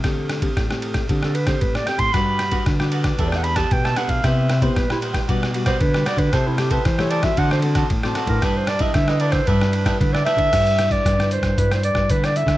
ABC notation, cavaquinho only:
X:1
M:4/4
L:1/16
Q:1/4=114
K:G
V:1 name="Cavaquinho"
z16 | [FGBd]2 [FGBd] [FGBd] z [GBd] [FGBd] [GBd] [DGBe]2 [DGBe] [DGBe] z [GBe] [DGBe]2 | [EBcg]2 [EBcg] [EBcg] z [Bcg] [EBcg] [Bcg] [FGBd]2 [FGBd] [FGBd] z [GBd] [FGBd]2 | [Aceg]2 [Aceg] [Aceg] z [ceg] [Aceg] [ceg] [FAcd]2 [FAcd] [FAcd] z [Acd] [FAcd]2 |
[DGBe]2 [DGBe] [DGBe] z [GBe] [DGBe] [GBe] [DGBe]2 [DGBe] [DGBe] z [GBe] [DGBe]2 | z16 |]